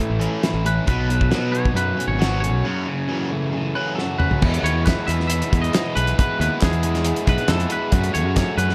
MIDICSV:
0, 0, Header, 1, 7, 480
1, 0, Start_track
1, 0, Key_signature, 4, "major"
1, 0, Tempo, 440529
1, 957, Time_signature, 4, 2, 24, 8
1, 9533, End_track
2, 0, Start_track
2, 0, Title_t, "Clean electric guitar"
2, 0, Program_c, 0, 27
2, 0, Note_on_c, 0, 64, 81
2, 722, Note_on_c, 0, 71, 72
2, 755, Note_off_c, 0, 64, 0
2, 944, Note_off_c, 0, 71, 0
2, 957, Note_on_c, 0, 71, 78
2, 1652, Note_off_c, 0, 71, 0
2, 1657, Note_on_c, 0, 73, 83
2, 1917, Note_off_c, 0, 73, 0
2, 1921, Note_on_c, 0, 71, 85
2, 2259, Note_off_c, 0, 71, 0
2, 2263, Note_on_c, 0, 73, 74
2, 2605, Note_off_c, 0, 73, 0
2, 2618, Note_on_c, 0, 73, 75
2, 4089, Note_on_c, 0, 71, 78
2, 4274, Note_off_c, 0, 73, 0
2, 4303, Note_off_c, 0, 71, 0
2, 4308, Note_on_c, 0, 69, 72
2, 4555, Note_off_c, 0, 69, 0
2, 4559, Note_on_c, 0, 71, 75
2, 5056, Note_on_c, 0, 73, 95
2, 5060, Note_off_c, 0, 71, 0
2, 5286, Note_on_c, 0, 71, 99
2, 5301, Note_off_c, 0, 73, 0
2, 5520, Note_on_c, 0, 76, 99
2, 5535, Note_off_c, 0, 71, 0
2, 5734, Note_off_c, 0, 76, 0
2, 5747, Note_on_c, 0, 76, 96
2, 6114, Note_off_c, 0, 76, 0
2, 6119, Note_on_c, 0, 75, 95
2, 6457, Note_off_c, 0, 75, 0
2, 6487, Note_on_c, 0, 71, 101
2, 6733, Note_off_c, 0, 71, 0
2, 6744, Note_on_c, 0, 71, 88
2, 6969, Note_off_c, 0, 71, 0
2, 6982, Note_on_c, 0, 71, 94
2, 7219, Note_off_c, 0, 71, 0
2, 7226, Note_on_c, 0, 68, 86
2, 7943, Note_on_c, 0, 71, 90
2, 7952, Note_off_c, 0, 68, 0
2, 8162, Note_on_c, 0, 69, 94
2, 8176, Note_off_c, 0, 71, 0
2, 8406, Note_off_c, 0, 69, 0
2, 8412, Note_on_c, 0, 71, 96
2, 8863, Note_off_c, 0, 71, 0
2, 8867, Note_on_c, 0, 73, 99
2, 9339, Note_off_c, 0, 73, 0
2, 9343, Note_on_c, 0, 71, 91
2, 9533, Note_off_c, 0, 71, 0
2, 9533, End_track
3, 0, Start_track
3, 0, Title_t, "French horn section"
3, 0, Program_c, 1, 60
3, 4809, Note_on_c, 1, 52, 77
3, 4811, Note_on_c, 1, 59, 74
3, 4817, Note_on_c, 1, 68, 75
3, 8595, Note_off_c, 1, 52, 0
3, 8596, Note_off_c, 1, 59, 0
3, 8629, Note_on_c, 1, 69, 88
3, 8636, Note_on_c, 1, 54, 77
3, 8643, Note_on_c, 1, 61, 73
3, 9533, Note_off_c, 1, 54, 0
3, 9533, Note_off_c, 1, 61, 0
3, 9533, Note_off_c, 1, 68, 0
3, 9533, Note_off_c, 1, 69, 0
3, 9533, End_track
4, 0, Start_track
4, 0, Title_t, "Overdriven electric guitar"
4, 0, Program_c, 2, 29
4, 0, Note_on_c, 2, 45, 63
4, 0, Note_on_c, 2, 52, 55
4, 0, Note_on_c, 2, 57, 54
4, 218, Note_on_c, 2, 61, 56
4, 228, Note_off_c, 2, 45, 0
4, 478, Note_on_c, 2, 64, 62
4, 705, Note_off_c, 2, 61, 0
4, 709, Note_on_c, 2, 61, 58
4, 940, Note_off_c, 2, 52, 0
4, 949, Note_on_c, 2, 47, 68
4, 951, Note_off_c, 2, 57, 0
4, 959, Note_off_c, 2, 64, 0
4, 982, Note_off_c, 2, 61, 0
4, 1204, Note_on_c, 2, 54, 61
4, 1416, Note_off_c, 2, 54, 0
4, 1429, Note_on_c, 2, 54, 64
4, 1672, Note_on_c, 2, 59, 54
4, 1905, Note_off_c, 2, 54, 0
4, 1918, Note_on_c, 2, 54, 66
4, 2160, Note_off_c, 2, 47, 0
4, 2166, Note_on_c, 2, 61, 50
4, 2403, Note_on_c, 2, 66, 68
4, 2644, Note_off_c, 2, 61, 0
4, 2657, Note_on_c, 2, 61, 49
4, 2883, Note_off_c, 2, 59, 0
4, 2885, Note_off_c, 2, 54, 0
4, 2887, Note_off_c, 2, 66, 0
4, 2889, Note_on_c, 2, 42, 63
4, 2893, Note_off_c, 2, 61, 0
4, 3132, Note_on_c, 2, 49, 63
4, 3391, Note_on_c, 2, 52, 60
4, 3621, Note_on_c, 2, 57, 51
4, 3847, Note_off_c, 2, 52, 0
4, 3860, Note_on_c, 2, 52, 51
4, 4092, Note_off_c, 2, 42, 0
4, 4096, Note_on_c, 2, 61, 55
4, 4333, Note_off_c, 2, 49, 0
4, 4339, Note_on_c, 2, 66, 69
4, 4569, Note_off_c, 2, 61, 0
4, 4583, Note_on_c, 2, 61, 51
4, 4816, Note_off_c, 2, 52, 0
4, 4816, Note_off_c, 2, 66, 0
4, 4817, Note_off_c, 2, 57, 0
4, 4817, Note_off_c, 2, 61, 0
4, 4823, Note_on_c, 2, 40, 87
4, 4824, Note_on_c, 2, 47, 88
4, 4832, Note_on_c, 2, 52, 92
4, 4842, Note_on_c, 2, 56, 97
4, 4847, Note_on_c, 2, 59, 100
4, 4847, Note_on_c, 2, 64, 88
4, 5048, Note_off_c, 2, 64, 0
4, 5052, Note_on_c, 2, 64, 68
4, 5060, Note_off_c, 2, 59, 0
4, 5064, Note_on_c, 2, 59, 64
4, 5069, Note_off_c, 2, 56, 0
4, 5074, Note_on_c, 2, 56, 67
4, 5081, Note_off_c, 2, 52, 0
4, 5086, Note_on_c, 2, 52, 54
4, 5290, Note_off_c, 2, 52, 0
4, 5294, Note_on_c, 2, 52, 84
4, 5297, Note_off_c, 2, 47, 0
4, 5304, Note_off_c, 2, 56, 0
4, 5309, Note_on_c, 2, 56, 93
4, 5314, Note_off_c, 2, 59, 0
4, 5319, Note_on_c, 2, 59, 81
4, 5325, Note_off_c, 2, 64, 0
4, 5329, Note_on_c, 2, 64, 85
4, 5531, Note_off_c, 2, 64, 0
4, 5536, Note_on_c, 2, 64, 70
4, 5546, Note_off_c, 2, 59, 0
4, 5550, Note_on_c, 2, 59, 68
4, 5560, Note_off_c, 2, 56, 0
4, 5564, Note_off_c, 2, 52, 0
4, 5564, Note_on_c, 2, 56, 61
4, 5568, Note_on_c, 2, 52, 51
4, 6001, Note_off_c, 2, 64, 0
4, 6010, Note_off_c, 2, 59, 0
4, 6014, Note_on_c, 2, 64, 70
4, 6020, Note_off_c, 2, 52, 0
4, 6023, Note_on_c, 2, 59, 65
4, 6027, Note_off_c, 2, 56, 0
4, 6032, Note_on_c, 2, 56, 66
4, 6033, Note_on_c, 2, 52, 54
4, 6250, Note_off_c, 2, 40, 0
4, 6254, Note_on_c, 2, 40, 107
4, 6259, Note_off_c, 2, 52, 0
4, 6260, Note_on_c, 2, 47, 89
4, 6265, Note_off_c, 2, 59, 0
4, 6267, Note_off_c, 2, 56, 0
4, 6271, Note_on_c, 2, 56, 110
4, 6272, Note_on_c, 2, 52, 111
4, 6276, Note_off_c, 2, 64, 0
4, 6278, Note_on_c, 2, 59, 103
4, 6289, Note_on_c, 2, 64, 106
4, 6721, Note_off_c, 2, 40, 0
4, 6730, Note_off_c, 2, 47, 0
4, 6734, Note_on_c, 2, 40, 84
4, 6740, Note_off_c, 2, 52, 0
4, 6743, Note_on_c, 2, 47, 95
4, 6749, Note_off_c, 2, 59, 0
4, 6750, Note_off_c, 2, 56, 0
4, 6751, Note_off_c, 2, 64, 0
4, 6753, Note_on_c, 2, 52, 99
4, 6754, Note_on_c, 2, 56, 100
4, 6762, Note_on_c, 2, 59, 93
4, 6764, Note_on_c, 2, 64, 93
4, 6953, Note_off_c, 2, 64, 0
4, 6964, Note_off_c, 2, 59, 0
4, 6966, Note_on_c, 2, 64, 84
4, 6977, Note_on_c, 2, 59, 69
4, 6980, Note_off_c, 2, 56, 0
4, 6983, Note_off_c, 2, 52, 0
4, 6984, Note_on_c, 2, 56, 64
4, 6997, Note_on_c, 2, 52, 62
4, 7196, Note_off_c, 2, 52, 0
4, 7206, Note_off_c, 2, 56, 0
4, 7207, Note_off_c, 2, 40, 0
4, 7210, Note_on_c, 2, 52, 70
4, 7210, Note_on_c, 2, 56, 87
4, 7212, Note_off_c, 2, 47, 0
4, 7216, Note_off_c, 2, 59, 0
4, 7217, Note_off_c, 2, 64, 0
4, 7229, Note_on_c, 2, 59, 83
4, 7230, Note_on_c, 2, 64, 103
4, 7435, Note_off_c, 2, 64, 0
4, 7448, Note_off_c, 2, 59, 0
4, 7448, Note_on_c, 2, 64, 69
4, 7462, Note_on_c, 2, 59, 59
4, 7468, Note_off_c, 2, 56, 0
4, 7472, Note_off_c, 2, 52, 0
4, 7472, Note_on_c, 2, 56, 59
4, 7485, Note_on_c, 2, 52, 60
4, 7896, Note_off_c, 2, 64, 0
4, 7909, Note_on_c, 2, 64, 71
4, 7910, Note_off_c, 2, 59, 0
4, 7919, Note_off_c, 2, 56, 0
4, 7924, Note_on_c, 2, 59, 62
4, 7932, Note_on_c, 2, 56, 66
4, 7933, Note_off_c, 2, 52, 0
4, 7946, Note_on_c, 2, 52, 64
4, 8141, Note_on_c, 2, 40, 88
4, 8148, Note_off_c, 2, 52, 0
4, 8155, Note_off_c, 2, 56, 0
4, 8155, Note_on_c, 2, 47, 101
4, 8161, Note_on_c, 2, 52, 107
4, 8163, Note_off_c, 2, 59, 0
4, 8165, Note_off_c, 2, 64, 0
4, 8168, Note_on_c, 2, 56, 104
4, 8177, Note_on_c, 2, 59, 106
4, 8178, Note_on_c, 2, 64, 117
4, 8612, Note_off_c, 2, 40, 0
4, 8619, Note_off_c, 2, 47, 0
4, 8622, Note_off_c, 2, 52, 0
4, 8625, Note_on_c, 2, 42, 94
4, 8626, Note_off_c, 2, 56, 0
4, 8630, Note_off_c, 2, 59, 0
4, 8630, Note_off_c, 2, 64, 0
4, 8634, Note_on_c, 2, 49, 91
4, 8643, Note_on_c, 2, 54, 104
4, 8645, Note_on_c, 2, 57, 98
4, 8651, Note_on_c, 2, 66, 99
4, 8652, Note_on_c, 2, 61, 94
4, 8857, Note_off_c, 2, 66, 0
4, 8861, Note_on_c, 2, 66, 79
4, 8862, Note_off_c, 2, 57, 0
4, 8868, Note_off_c, 2, 61, 0
4, 8872, Note_on_c, 2, 61, 64
4, 8875, Note_on_c, 2, 57, 70
4, 8886, Note_off_c, 2, 54, 0
4, 8890, Note_on_c, 2, 54, 63
4, 9096, Note_off_c, 2, 54, 0
4, 9096, Note_off_c, 2, 57, 0
4, 9100, Note_on_c, 2, 54, 85
4, 9109, Note_on_c, 2, 57, 98
4, 9111, Note_off_c, 2, 49, 0
4, 9120, Note_off_c, 2, 61, 0
4, 9125, Note_on_c, 2, 61, 91
4, 9126, Note_off_c, 2, 66, 0
4, 9130, Note_on_c, 2, 66, 81
4, 9340, Note_off_c, 2, 66, 0
4, 9345, Note_on_c, 2, 66, 68
4, 9347, Note_off_c, 2, 61, 0
4, 9351, Note_off_c, 2, 57, 0
4, 9352, Note_on_c, 2, 61, 62
4, 9365, Note_on_c, 2, 57, 58
4, 9372, Note_off_c, 2, 54, 0
4, 9377, Note_on_c, 2, 54, 65
4, 9533, Note_off_c, 2, 42, 0
4, 9533, Note_off_c, 2, 54, 0
4, 9533, Note_off_c, 2, 57, 0
4, 9533, Note_off_c, 2, 61, 0
4, 9533, Note_off_c, 2, 66, 0
4, 9533, End_track
5, 0, Start_track
5, 0, Title_t, "Distorted electric guitar"
5, 0, Program_c, 3, 30
5, 0, Note_on_c, 3, 45, 62
5, 0, Note_on_c, 3, 52, 66
5, 193, Note_off_c, 3, 45, 0
5, 206, Note_off_c, 3, 52, 0
5, 206, Note_on_c, 3, 45, 73
5, 218, Note_on_c, 3, 52, 71
5, 221, Note_on_c, 3, 57, 76
5, 446, Note_off_c, 3, 45, 0
5, 452, Note_off_c, 3, 52, 0
5, 453, Note_off_c, 3, 57, 0
5, 464, Note_on_c, 3, 45, 52
5, 465, Note_on_c, 3, 52, 71
5, 686, Note_off_c, 3, 45, 0
5, 686, Note_off_c, 3, 52, 0
5, 705, Note_on_c, 3, 45, 54
5, 716, Note_on_c, 3, 52, 67
5, 927, Note_off_c, 3, 45, 0
5, 933, Note_off_c, 3, 52, 0
5, 942, Note_on_c, 3, 47, 75
5, 952, Note_on_c, 3, 59, 92
5, 954, Note_on_c, 3, 54, 80
5, 1176, Note_off_c, 3, 47, 0
5, 1177, Note_off_c, 3, 54, 0
5, 1181, Note_off_c, 3, 59, 0
5, 1190, Note_on_c, 3, 47, 64
5, 1190, Note_on_c, 3, 54, 62
5, 1411, Note_off_c, 3, 54, 0
5, 1412, Note_off_c, 3, 47, 0
5, 1423, Note_on_c, 3, 47, 77
5, 1425, Note_on_c, 3, 54, 75
5, 1433, Note_on_c, 3, 59, 84
5, 1651, Note_off_c, 3, 47, 0
5, 1651, Note_off_c, 3, 54, 0
5, 1663, Note_off_c, 3, 59, 0
5, 1664, Note_on_c, 3, 47, 53
5, 1664, Note_on_c, 3, 54, 61
5, 1890, Note_off_c, 3, 47, 0
5, 1890, Note_off_c, 3, 54, 0
5, 1911, Note_on_c, 3, 47, 67
5, 1913, Note_on_c, 3, 54, 69
5, 2131, Note_off_c, 3, 47, 0
5, 2135, Note_off_c, 3, 54, 0
5, 2144, Note_on_c, 3, 47, 52
5, 2151, Note_on_c, 3, 54, 56
5, 2367, Note_off_c, 3, 47, 0
5, 2368, Note_off_c, 3, 54, 0
5, 2380, Note_on_c, 3, 47, 65
5, 2381, Note_on_c, 3, 54, 65
5, 2392, Note_on_c, 3, 59, 75
5, 2616, Note_off_c, 3, 47, 0
5, 2620, Note_off_c, 3, 54, 0
5, 2626, Note_off_c, 3, 59, 0
5, 2629, Note_on_c, 3, 47, 59
5, 2638, Note_on_c, 3, 54, 54
5, 2855, Note_off_c, 3, 47, 0
5, 2859, Note_off_c, 3, 54, 0
5, 2876, Note_on_c, 3, 42, 71
5, 2884, Note_on_c, 3, 49, 77
5, 2886, Note_on_c, 3, 54, 95
5, 3109, Note_off_c, 3, 42, 0
5, 3112, Note_off_c, 3, 49, 0
5, 3114, Note_off_c, 3, 54, 0
5, 3124, Note_on_c, 3, 42, 58
5, 3125, Note_on_c, 3, 49, 57
5, 3343, Note_off_c, 3, 42, 0
5, 3344, Note_off_c, 3, 49, 0
5, 3354, Note_on_c, 3, 42, 74
5, 3363, Note_on_c, 3, 49, 71
5, 3366, Note_on_c, 3, 54, 85
5, 3588, Note_off_c, 3, 42, 0
5, 3593, Note_off_c, 3, 49, 0
5, 3594, Note_off_c, 3, 54, 0
5, 3603, Note_on_c, 3, 42, 59
5, 3605, Note_on_c, 3, 49, 61
5, 3823, Note_off_c, 3, 42, 0
5, 3824, Note_off_c, 3, 49, 0
5, 3845, Note_on_c, 3, 42, 55
5, 3847, Note_on_c, 3, 49, 60
5, 4065, Note_off_c, 3, 42, 0
5, 4065, Note_off_c, 3, 49, 0
5, 4093, Note_on_c, 3, 42, 67
5, 4104, Note_on_c, 3, 49, 67
5, 4104, Note_on_c, 3, 54, 73
5, 4314, Note_off_c, 3, 42, 0
5, 4315, Note_off_c, 3, 49, 0
5, 4323, Note_off_c, 3, 54, 0
5, 4327, Note_on_c, 3, 42, 51
5, 4328, Note_on_c, 3, 49, 59
5, 4546, Note_off_c, 3, 42, 0
5, 4546, Note_off_c, 3, 49, 0
5, 4567, Note_on_c, 3, 42, 56
5, 4574, Note_on_c, 3, 49, 62
5, 4785, Note_off_c, 3, 42, 0
5, 4789, Note_off_c, 3, 49, 0
5, 9533, End_track
6, 0, Start_track
6, 0, Title_t, "Fingered electric bass"
6, 0, Program_c, 4, 33
6, 104, Note_on_c, 4, 33, 71
6, 289, Note_off_c, 4, 33, 0
6, 585, Note_on_c, 4, 33, 79
6, 862, Note_off_c, 4, 33, 0
6, 951, Note_on_c, 4, 35, 86
6, 1426, Note_on_c, 4, 47, 71
6, 1442, Note_off_c, 4, 35, 0
6, 1796, Note_off_c, 4, 47, 0
6, 1898, Note_on_c, 4, 42, 73
6, 2089, Note_off_c, 4, 42, 0
6, 2261, Note_on_c, 4, 32, 73
6, 2750, Note_off_c, 4, 32, 0
6, 2750, Note_on_c, 4, 35, 65
6, 2848, Note_off_c, 4, 35, 0
6, 4814, Note_on_c, 4, 40, 104
6, 4994, Note_off_c, 4, 40, 0
6, 5046, Note_on_c, 4, 39, 85
6, 5173, Note_off_c, 4, 39, 0
6, 5173, Note_on_c, 4, 40, 75
6, 5353, Note_off_c, 4, 40, 0
6, 5534, Note_on_c, 4, 40, 84
6, 5894, Note_off_c, 4, 40, 0
6, 6023, Note_on_c, 4, 40, 95
6, 6198, Note_off_c, 4, 40, 0
6, 6500, Note_on_c, 4, 35, 101
6, 6676, Note_off_c, 4, 35, 0
6, 6970, Note_on_c, 4, 39, 90
6, 7058, Note_off_c, 4, 39, 0
6, 7218, Note_on_c, 4, 40, 84
6, 7752, Note_off_c, 4, 40, 0
6, 7932, Note_on_c, 4, 35, 88
6, 8017, Note_off_c, 4, 35, 0
6, 8153, Note_on_c, 4, 41, 96
6, 8335, Note_off_c, 4, 41, 0
6, 8640, Note_on_c, 4, 42, 105
6, 8818, Note_off_c, 4, 42, 0
6, 8884, Note_on_c, 4, 39, 93
6, 8993, Note_off_c, 4, 39, 0
6, 8993, Note_on_c, 4, 42, 83
6, 9173, Note_off_c, 4, 42, 0
6, 9342, Note_on_c, 4, 42, 95
6, 9533, Note_off_c, 4, 42, 0
6, 9533, End_track
7, 0, Start_track
7, 0, Title_t, "Drums"
7, 231, Note_on_c, 9, 42, 49
7, 340, Note_off_c, 9, 42, 0
7, 472, Note_on_c, 9, 42, 64
7, 474, Note_on_c, 9, 38, 73
7, 581, Note_off_c, 9, 42, 0
7, 583, Note_off_c, 9, 38, 0
7, 718, Note_on_c, 9, 42, 54
7, 827, Note_off_c, 9, 42, 0
7, 953, Note_on_c, 9, 42, 62
7, 958, Note_on_c, 9, 36, 79
7, 1062, Note_off_c, 9, 42, 0
7, 1066, Note_off_c, 9, 36, 0
7, 1201, Note_on_c, 9, 42, 54
7, 1309, Note_off_c, 9, 42, 0
7, 1319, Note_on_c, 9, 36, 76
7, 1428, Note_off_c, 9, 36, 0
7, 1432, Note_on_c, 9, 42, 61
7, 1434, Note_on_c, 9, 38, 88
7, 1541, Note_off_c, 9, 42, 0
7, 1543, Note_off_c, 9, 38, 0
7, 1685, Note_on_c, 9, 42, 50
7, 1794, Note_off_c, 9, 42, 0
7, 1803, Note_on_c, 9, 36, 77
7, 1912, Note_off_c, 9, 36, 0
7, 1925, Note_on_c, 9, 42, 77
7, 2034, Note_off_c, 9, 42, 0
7, 2180, Note_on_c, 9, 42, 60
7, 2289, Note_off_c, 9, 42, 0
7, 2415, Note_on_c, 9, 42, 63
7, 2417, Note_on_c, 9, 38, 83
7, 2524, Note_off_c, 9, 42, 0
7, 2526, Note_off_c, 9, 38, 0
7, 2657, Note_on_c, 9, 42, 50
7, 2766, Note_off_c, 9, 42, 0
7, 4342, Note_on_c, 9, 38, 44
7, 4451, Note_off_c, 9, 38, 0
7, 4573, Note_on_c, 9, 45, 67
7, 4682, Note_off_c, 9, 45, 0
7, 4697, Note_on_c, 9, 43, 64
7, 4806, Note_off_c, 9, 43, 0
7, 4815, Note_on_c, 9, 49, 91
7, 4822, Note_on_c, 9, 36, 87
7, 4924, Note_off_c, 9, 49, 0
7, 4931, Note_off_c, 9, 36, 0
7, 4946, Note_on_c, 9, 42, 45
7, 5055, Note_off_c, 9, 42, 0
7, 5074, Note_on_c, 9, 42, 75
7, 5183, Note_off_c, 9, 42, 0
7, 5300, Note_on_c, 9, 39, 109
7, 5309, Note_on_c, 9, 36, 88
7, 5312, Note_on_c, 9, 42, 93
7, 5314, Note_on_c, 9, 38, 105
7, 5409, Note_off_c, 9, 39, 0
7, 5417, Note_off_c, 9, 36, 0
7, 5421, Note_off_c, 9, 42, 0
7, 5423, Note_off_c, 9, 38, 0
7, 5538, Note_on_c, 9, 39, 73
7, 5545, Note_on_c, 9, 42, 77
7, 5647, Note_off_c, 9, 39, 0
7, 5654, Note_off_c, 9, 42, 0
7, 5667, Note_on_c, 9, 38, 32
7, 5771, Note_on_c, 9, 42, 108
7, 5776, Note_off_c, 9, 38, 0
7, 5880, Note_off_c, 9, 42, 0
7, 5904, Note_on_c, 9, 42, 55
7, 6013, Note_off_c, 9, 42, 0
7, 6024, Note_on_c, 9, 36, 82
7, 6024, Note_on_c, 9, 42, 83
7, 6132, Note_off_c, 9, 36, 0
7, 6133, Note_off_c, 9, 42, 0
7, 6145, Note_on_c, 9, 42, 44
7, 6254, Note_off_c, 9, 42, 0
7, 6254, Note_on_c, 9, 39, 87
7, 6259, Note_on_c, 9, 42, 90
7, 6261, Note_on_c, 9, 38, 95
7, 6363, Note_off_c, 9, 39, 0
7, 6368, Note_off_c, 9, 42, 0
7, 6370, Note_off_c, 9, 38, 0
7, 6501, Note_on_c, 9, 42, 72
7, 6610, Note_off_c, 9, 42, 0
7, 6617, Note_on_c, 9, 42, 46
7, 6726, Note_off_c, 9, 42, 0
7, 6742, Note_on_c, 9, 42, 90
7, 6745, Note_on_c, 9, 36, 108
7, 6851, Note_off_c, 9, 42, 0
7, 6854, Note_off_c, 9, 36, 0
7, 6988, Note_on_c, 9, 42, 71
7, 7097, Note_off_c, 9, 42, 0
7, 7203, Note_on_c, 9, 39, 103
7, 7215, Note_on_c, 9, 42, 91
7, 7218, Note_on_c, 9, 38, 111
7, 7219, Note_on_c, 9, 36, 80
7, 7312, Note_off_c, 9, 39, 0
7, 7324, Note_off_c, 9, 42, 0
7, 7326, Note_off_c, 9, 38, 0
7, 7328, Note_off_c, 9, 36, 0
7, 7331, Note_on_c, 9, 42, 41
7, 7440, Note_off_c, 9, 42, 0
7, 7442, Note_on_c, 9, 42, 67
7, 7551, Note_off_c, 9, 42, 0
7, 7572, Note_on_c, 9, 42, 45
7, 7574, Note_on_c, 9, 38, 32
7, 7677, Note_off_c, 9, 42, 0
7, 7677, Note_on_c, 9, 42, 95
7, 7683, Note_off_c, 9, 38, 0
7, 7786, Note_off_c, 9, 42, 0
7, 7805, Note_on_c, 9, 42, 48
7, 7914, Note_off_c, 9, 42, 0
7, 7923, Note_on_c, 9, 42, 70
7, 7927, Note_on_c, 9, 36, 88
7, 8032, Note_off_c, 9, 42, 0
7, 8036, Note_off_c, 9, 36, 0
7, 8041, Note_on_c, 9, 42, 40
7, 8150, Note_off_c, 9, 42, 0
7, 8150, Note_on_c, 9, 42, 80
7, 8152, Note_on_c, 9, 38, 94
7, 8155, Note_on_c, 9, 39, 90
7, 8259, Note_off_c, 9, 42, 0
7, 8261, Note_off_c, 9, 38, 0
7, 8264, Note_off_c, 9, 39, 0
7, 8279, Note_on_c, 9, 42, 46
7, 8388, Note_off_c, 9, 42, 0
7, 8388, Note_on_c, 9, 42, 74
7, 8497, Note_off_c, 9, 42, 0
7, 8629, Note_on_c, 9, 42, 94
7, 8635, Note_on_c, 9, 36, 99
7, 8738, Note_off_c, 9, 42, 0
7, 8744, Note_off_c, 9, 36, 0
7, 8755, Note_on_c, 9, 42, 48
7, 8864, Note_off_c, 9, 42, 0
7, 8876, Note_on_c, 9, 42, 75
7, 8985, Note_off_c, 9, 42, 0
7, 9115, Note_on_c, 9, 36, 90
7, 9115, Note_on_c, 9, 42, 101
7, 9117, Note_on_c, 9, 38, 107
7, 9117, Note_on_c, 9, 39, 109
7, 9224, Note_off_c, 9, 36, 0
7, 9224, Note_off_c, 9, 42, 0
7, 9226, Note_off_c, 9, 38, 0
7, 9226, Note_off_c, 9, 39, 0
7, 9354, Note_on_c, 9, 42, 69
7, 9359, Note_on_c, 9, 39, 75
7, 9463, Note_off_c, 9, 42, 0
7, 9468, Note_off_c, 9, 39, 0
7, 9471, Note_on_c, 9, 38, 34
7, 9533, Note_off_c, 9, 38, 0
7, 9533, End_track
0, 0, End_of_file